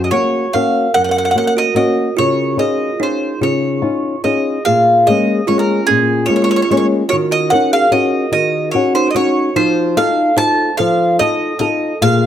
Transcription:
Already playing: nylon-string guitar F#2
0.04 kalimba F#4, mandolin D#5
0.11 nylon-string guitar A#3 C#4 F#4, kalimba F#4, mandolin C#5
0.53 nylon-string guitar A#3 C#4 F#4, kalimba A#4, mandolin F5
0.94 nylon-string guitar F#2, kalimba A#4, mandolin F#5
1.01 kalimba A#4, mandolin F#5
1.09 kalimba A#4, mandolin F#5
1.17 kalimba A#4, mandolin F#5
1.24 kalimba A#4, mandolin F#5
1.30 kalimba A#4, mandolin F#5
1.34 nylon-string guitar A#3 C#4 F#4, kalimba A#4, mandolin F#5
1.44 kalimba A#4, mandolin F#5
1.57 kalimba F#4, mandolin D#5
1.75 nylon-string guitar A#3 C#4 F#4, kalimba F#4, mandolin D#5
2.17 nylon-string guitar C#3, kalimba F4, mandolin C#5
2.57 nylon-string guitar C#4 D#4 F4, kalimba G#4, mandolin D#5
3.00 nylon-string guitar C#4 D#4 F4, kalimba D#4, mandolin C5
3.41 nylon-string guitar C#3, kalimba F4, mandolin C#5
3.82 nylon-string guitar C#4 D#4 F4
4.24 nylon-string guitar C#4 D#4 F4, kalimba G#4, mandolin D#5
4.65 nylon-string guitar A#2, kalimba G#4, mandolin F5
5.07 nylon-string guitar G#3 A#3 C#4, kalimba G#4, mandolin D#5
5.47 nylon-string guitar G#3 A#3 C#4, kalimba F4, mandolin C#5
5.58 kalimba C#4, mandolin A#4
5.87 nylon-string guitar A#2, kalimba C#4, mandolin G#4
6.26 nylon-string guitar G#3 A#3, kalimba F4, mandolin C#5
6.30 nylon-string guitar C#4
6.36 kalimba F4, mandolin C#5
6.42 kalimba F4, mandolin C#5
6.49 kalimba F4, mandolin C#5
6.56 kalimba F4, mandolin C#5
6.62 kalimba F4, mandolin C#5
6.71 nylon-string guitar G#3 A#3 C#4, kalimba F4, mandolin C#5
6.77 kalimba F4, mandolin C#5
7.09 nylon-string guitar D#3, kalimba F#4, mandolin C#5
7.31 kalimba F#4, mandolin D#5
7.50 nylon-string guitar C#4 D#4 F#4, kalimba A#4, mandolin F#5
7.73 kalimba G#4, mandolin F5
7.91 nylon-string guitar C#4 D#4 F#4, kalimba F#4, mandolin D#5
8.32 nylon-string guitar D#3, kalimba F#4, mandolin D#5
8.71 nylon-string guitar C#4 D#4 F#4, kalimba F#4, mandolin C#5
8.95 kalimba D#4, mandolin C5
9.07 kalimba F#4, mandolin D#5
9.15 nylon-string guitar C#4 D#4 F#4, kalimba F#4, mandolin C#5
9.56 nylon-string guitar F3, kalimba D#4, mandolin C5
9.97 nylon-string guitar D#4 F4 A4, kalimba A4, mandolin F5
10.36 nylon-string guitar D#4 F4 A4, kalimba C5, mandolin A5
10.77 nylon-string guitar F3, kalimba A4, mandolin F5
11.19 nylon-string guitar D#4 F4 A4, kalimba A4, mandolin D#5
11.59 nylon-string guitar D#4 F4 A4, kalimba A4, mandolin D#5
12.01 nylon-string guitar A#2, kalimba G#4, mandolin F5

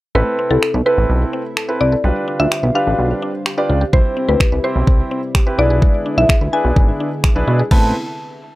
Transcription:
0.15 analog synth bass A1, analog synth pad C3 A3 C4 E4, synth arpeggio sound A3, grand piano C4 E4 A4 B4, synth pluck B4
0.39 synth arpeggio sound C4
0.51 analog synth bass C2, synth arpeggio sound E4, synth pluck A4
0.62 synth arpeggio sound A4, finger snap
0.74 analog synth bass B1, synth arpeggio sound B4
0.86 grand piano C4 E4 A4 B4, synth pluck B4
0.98 analog synth bass A1
1.10 analog synth bass B1
1.33 synth arpeggio sound C4
1.57 synth arpeggio sound A4, finger snap
1.68 grand piano C4 E4 A4 B4, synth arpeggio sound B4
1.80 analog synth bass C2, synth arpeggio sound E4, synth pluck D5
1.92 synth arpeggio sound A4
2.04 analog synth bass B1, analog synth pad D3 G3 F4, synth arpeggio sound G3, grand piano D4 F4 G4 B4
2.28 synth arpeggio sound D4
2.40 analog synth bass D2, synth arpeggio sound F4, synth pluck E5
2.51 synth arpeggio sound G4, finger snap
2.63 analog synth bass B1, synth arpeggio sound B4
2.75 grand piano D4 F4 G4 B4, synth pluck F5
2.87 analog synth bass A1
2.99 analog synth bass B1
3.22 synth arpeggio sound D4
3.46 synth arpeggio sound G4, finger snap
3.57 grand piano D4 F4 G4 D5, synth arpeggio sound B4
3.69 analog synth bass C#2, synth arpeggio sound F4
3.81 synth arpeggio sound G4
3.93 analog synth bass C2, analog synth pad C3 G3 E4, synth arpeggio sound G3, grand piano C4 E4 G4 C5, synth pluck C5, kick
4.17 synth arpeggio sound C4
4.29 analog synth bass D2, synth arpeggio sound E4, synth pluck B4
4.40 synth arpeggio sound G4, finger snap, kick
4.52 analog synth bass C2, synth arpeggio sound B4
4.64 grand piano C4 E4 G4 C5, synth pluck C5
4.76 analog synth bass B1
4.87 analog synth bass C2, kick
5.11 synth arpeggio sound C4
5.35 synth arpeggio sound G4, finger snap, kick
5.46 grand piano C4 E4 G4 B4, synth arpeggio sound B4
5.58 analog synth bass B1, analog synth pad D3 G#3 B3 E4, grand piano D4 E4 G#4 B4, synth arpeggio sound E4, synth pluck D5
5.70 synth arpeggio sound G#4
5.82 synth arpeggio sound G#3, kick
6.06 synth arpeggio sound D4
6.18 analog synth bass B1, synth arpeggio sound E4, synth pluck E5
6.29 synth arpeggio sound G#4, finger snap, kick
6.41 analog synth bass D2, synth arpeggio sound B4
6.53 grand piano D4 E4 G#4 B4, synth pluck G#5
6.65 analog synth bass B1
6.76 analog synth bass G#1, kick
7.00 synth arpeggio sound D4
7.24 analog synth bass B1, synth arpeggio sound G#4, finger snap, kick
7.35 analog synth bass B1, grand piano D4 E4 G#4 B4, synth arpeggio sound B4
7.48 analog synth bass B2, synth arpeggio sound E4
7.59 synth arpeggio sound G#4
7.71 analog synth bass A1, analog synth pad C3 A3 B3 E4, synth arpeggio sound A3 B3 C4 E4, grand piano C4 E4 A4 B4, synth pluck A5, kick, crash

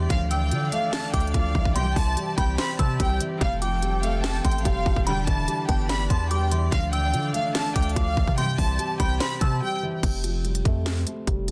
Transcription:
Already playing: grand piano D3 E3 G3 B3 D4, string section D5
0.09 808-style bass D2, string section D2 A2 D3 F3 D4 F5, grand piano D3, violin section F5, kick, closed hi-hat
0.31 grand piano E3, violin section G5, synth bell E6, closed hi-hat
0.51 808-style bass D3, grand piano F3, closed hi-hat
0.72 grand piano A3, violin section F5, closed hi-hat
0.92 grand piano D4, violin section A5, snare, closed hi-hat
1.13 808-style bass D2, grand piano A3, violin section G5, synth bell D6, kick, closed hi-hat
1.20 closed hi-hat
1.27 closed hi-hat
1.34 808-style bass D2, grand piano F3, violin section F5, kick, closed hi-hat
1.55 808-style bass C2, grand piano E3, kick
1.65 kick
1.75 string section C2 G2 C3 E3 C4 G4, grand piano C3, violin section G5, synth bell C6, closed hi-hat
1.96 808-style bass C2, grand piano E3, violin section A5, kick, open hi-hat
2.17 grand piano G3, closed hi-hat
2.38 808-style bass C2, grand piano C4, violin section G5, synth bell B5, kick, closed hi-hat
2.58 grand piano C5, violin section B5, synth bell C6, snare, closed hi-hat
2.79 808-style bass C3, grand piano C4, violin section A5, synth bell E6, kick, closed hi-hat
3.00 808-style bass C2, grand piano G3, violin section G5, kick, closed hi-hat
3.20 grand piano E3, closed hi-hat
3.41 808-style bass F1, string section C2 A2 F3 G3 A4 G5, grand piano C3, violin section F5, kick, closed hi-hat
3.62 grand piano F3, violin section G5, synth bell D6, closed hi-hat
3.82 grand piano G3, closed hi-hat
4.03 grand piano A3, violin section F5, closed hi-hat
4.23 grand piano C4, violin section A5, snare, closed hi-hat
4.44 808-style bass A1, grand piano A3, violin section G5, synth bell C6, kick, closed hi-hat
4.51 closed hi-hat
4.58 closed hi-hat
4.64 808-style bass F1, grand piano G3, violin section F5, kick, closed hi-hat
4.86 808-style bass F1, grand piano F3, kick
4.96 808-style bass E1, kick
5.07 string section E2 D3 E3 G3 D4 G4 D5, grand piano D3, violin section G5, synth bell B5, closed hi-hat
5.27 808-style bass E1, grand piano E3, violin section A5, kick, closed hi-hat
5.48 grand piano G3, closed hi-hat
5.68 808-style bass G1, grand piano B3, violin section G5, synth bell A5, kick, closed hi-hat
5.89 grand piano D4, violin section B5, synth bell B5, snare, closed hi-hat
6.10 808-style bass E2, grand piano B3, violin section A5, synth bell C6, kick, closed hi-hat
6.30 grand piano G3, violin section G5, synth bell D6, closed hi-hat
6.51 grand piano E3, synth bell C6, closed hi-hat
6.71 string section D2 A2 D3 F3 D4 F5, 808-style bass D2, grand piano D3, violin section F5, kick, closed hi-hat
6.93 grand piano E3, violin section G5, synth bell E6, closed hi-hat
7.14 808-style bass D3, grand piano F3, closed hi-hat
7.34 grand piano A3, violin section F5, closed hi-hat
7.55 grand piano D4, violin section A5, snare, closed hi-hat
7.75 808-style bass D2, grand piano A3, violin section G5, synth bell D6, kick, closed hi-hat
7.83 closed hi-hat
7.89 closed hi-hat
7.96 808-style bass D2, grand piano F3, violin section F5, kick, closed hi-hat
8.17 808-style bass D2, grand piano E3, kick
8.27 808-style bass C3, kick
8.37 string section C2 G2 C3 E3 C4 G4, grand piano C3, violin section G5, synth bell C6, closed hi-hat
8.58 808-style bass C2, grand piano E3, violin section A5, kick, open hi-hat
8.79 grand piano G3, closed hi-hat
9.00 808-style bass C2, grand piano C4, violin section G5, synth bell B5, kick, closed hi-hat
9.20 grand piano C5, violin section B5, synth bell C6, snare, closed hi-hat
9.41 808-style bass C3, grand piano C4, violin section A5, synth bell E6, kick, closed hi-hat
9.62 grand piano G3, violin section G5
9.83 grand piano E3
10.03 808-style bass F1, grand piano C3, kick, closed hi-hat, crash
10.24 grand piano F3, closed hi-hat
10.45 grand piano G3, closed hi-hat
10.55 closed hi-hat
10.65 808-style bass F2, grand piano A3, kick, closed hi-hat
10.86 grand piano C4, snare, closed hi-hat
11.07 grand piano A3, closed hi-hat
11.27 808-style bass F1, grand piano G3, kick, closed hi-hat
11.48 808-style bass G1, grand piano F3, closed hi-hat

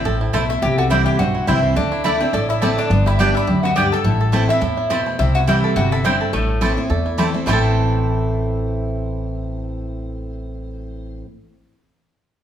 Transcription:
Already playing: mandolin C4, five-string banjo E4, resonator guitar played with a steel bar C5
0.05 upright bass A1, steel-string acoustic guitar A2, five-string banjo A4
0.21 five-string banjo E4
0.33 upright bass B1, steel-string acoustic guitar B2, mandolin A3 E4 C5 A5, five-string banjo A4, resonator guitar played with a steel bar E5
0.49 five-string banjo A3, mandolin E4, resonator guitar played with a steel bar E5
0.62 upright bass C2, steel-string acoustic guitar C3, five-string banjo E4, mandolin G4, resonator guitar played with a steel bar G5
0.78 mandolin F#4, five-string banjo A4, resonator guitar played with a steel bar F#5
0.90 steel-string acoustic guitar E3 G3 C4 E4, mandolin C4 E4 C5 G5, five-string banjo E4, resonator guitar played with a steel bar E5
1.06 five-string banjo E4, mandolin G4, resonator guitar played with a steel bar G5
1.19 upright bass B1, steel-string acoustic guitar G2, five-string banjo C4, mandolin F#4, resonator guitar played with a steel bar F#5
1.35 five-string banjo E4
1.47 upright bass C2, steel-string acoustic guitar E3 G3 C4 E4, mandolin C4 E4 C5 G5, five-string banjo E4, resonator guitar played with a steel bar E5
1.63 five-string banjo C4
1.76 upright bass D2, steel-string acoustic guitar D3, five-string banjo A3, mandolin D4, resonator guitar played with a steel bar D5
1.92 five-string banjo E4
2.04 steel-string acoustic guitar D3 A3 D4 E4, mandolin A3 E4 D5 A5, five-string banjo A4, resonator guitar played with a steel bar E5
2.20 mandolin C4, steel-string acoustic guitar D4 E4, five-string banjo E4, resonator guitar played with a steel bar C5
2.33 upright bass A1, steel-string acoustic guitar A2, mandolin D4, five-string banjo A4, resonator guitar played with a steel bar D5
2.49 five-string banjo E4, mandolin E4, resonator guitar played with a steel bar E5
2.62 steel-string acoustic guitar D3 A3 D4 E4, mandolin A3 C4 E4 D5 A5, five-string banjo A4, resonator guitar played with a steel bar C5
2.78 five-string banjo A3, mandolin D4, resonator guitar played with a steel bar D5
2.90 upright bass G1, steel-string acoustic guitar G2, five-string banjo B3
3.06 mandolin E4, five-string banjo G4, resonator guitar played with a steel bar E5
3.19 steel-string acoustic guitar G3 B3 D4 G4, mandolin B3 D4 G4 D5 G5, five-string banjo B3, resonator guitar played with a steel bar D5
3.34 five-string banjo D4, steel-string acoustic guitar D4 G4, mandolin E4, resonator guitar played with a steel bar E5
3.47 upright bass D2, steel-string acoustic guitar F#2, five-string banjo G4
3.63 five-string banjo B3, mandolin F#4, resonator guitar played with a steel bar F#5
3.76 steel-string acoustic guitar G2, mandolin B3 G4 D5 G5, five-string banjo G4, resonator guitar played with a steel bar G5
3.92 five-string banjo A4, mandolin A4, resonator guitar played with a steel bar A5
4.04 upright bass A1, steel-string acoustic guitar A2, five-string banjo E4
4.21 five-string banjo A4
4.32 steel-string acoustic guitar E3 A3 C4 E4, mandolin A3 E4 C5 A5, five-string banjo E4
4.49 five-string banjo E4, mandolin E4, resonator guitar played with a steel bar E5
4.61 upright bass E2, steel-string acoustic guitar A2, five-string banjo A3
4.77 five-string banjo E4
4.90 steel-string acoustic guitar B2, mandolin A3 C4 E4 C5 A5, five-string banjo E4, resonator guitar played with a steel bar C5
5.06 five-string banjo A3
5.19 upright bass C2, steel-string acoustic guitar C3, five-string banjo C4, mandolin E4, resonator guitar played with a steel bar E5
5.35 five-string banjo E4, mandolin F#4, resonator guitar played with a steel bar F#5
5.47 steel-string acoustic guitar E3 G3 C4 E4, mandolin C4 E4 C5 G5, five-string banjo C4, resonator guitar played with a steel bar E5
5.64 five-string banjo A4
5.76 upright bass G1, steel-string acoustic guitar C3, five-string banjo E4, mandolin F#4, resonator guitar played with a steel bar F#5
5.91 mandolin E4, five-string banjo A4, resonator guitar played with a steel bar E5
6.04 steel-string acoustic guitar G2, mandolin C4 E4 C5 G5, five-string banjo E4, resonator guitar played with a steel bar C5
6.21 five-string banjo A4
6.33 upright bass A1, steel-string acoustic guitar A2, five-string banjo A3, mandolin A3, resonator guitar played with a steel bar A4
6.61 steel-string acoustic guitar E3 A3 C4 E4, mandolin A3 E4 C5 A5, five-string banjo A4
6.77 steel-string acoustic guitar C4 E4, five-string banjo E4
6.90 steel-string acoustic guitar E2, upright bass E2, five-string banjo A4
7.06 five-string banjo E4
7.18 steel-string acoustic guitar E3 A3 C4 E4, mandolin A3 E4 C5 A5, five-string banjo A4
7.34 five-string banjo A3, steel-string acoustic guitar C4 E4
7.46 upright bass A1, steel-string acoustic guitar A2 E3 A3 C4 E4, mandolin A3 C4 E4 C5 A5, five-string banjo A3 C4, resonator guitar played with a steel bar C5
7.51 five-string banjo E4 A4

